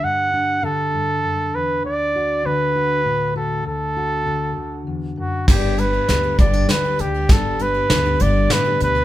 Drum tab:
CC |------|------|------|x-----|
HH |------|------|------|-xxxxx|
SD |------|------|------|o-o-o-|
BD |------|------|------|o--o--|

CC |------|
HH |xxxxxx|
SD |o-o-o-|
BD |o-----|